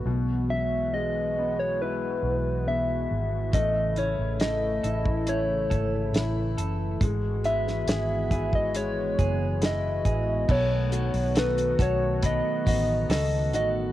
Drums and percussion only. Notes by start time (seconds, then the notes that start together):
3.53 kick, closed hi-hat
3.96 closed hi-hat
4.40 snare, closed hi-hat
4.84 closed hi-hat
5.05 kick
5.27 closed hi-hat
5.71 kick, closed hi-hat
6.14 snare, closed hi-hat
6.58 closed hi-hat
7.01 kick, closed hi-hat
7.44 closed hi-hat
7.68 snare
7.88 snare, closed hi-hat
8.31 kick, closed hi-hat
8.53 kick
8.75 closed hi-hat
9.19 kick, closed hi-hat
9.62 snare, closed hi-hat
10.05 kick, closed hi-hat
10.49 kick, crash
10.92 hi-hat pedal, open hi-hat
11.14 open hi-hat
11.36 snare, hi-hat pedal, open hi-hat
11.58 hi-hat pedal
11.79 kick, hi-hat pedal, open hi-hat
12.23 kick, hi-hat pedal, open hi-hat
12.67 kick, hi-hat pedal, open hi-hat
13.10 snare, hi-hat pedal, open hi-hat
13.53 hi-hat pedal, open hi-hat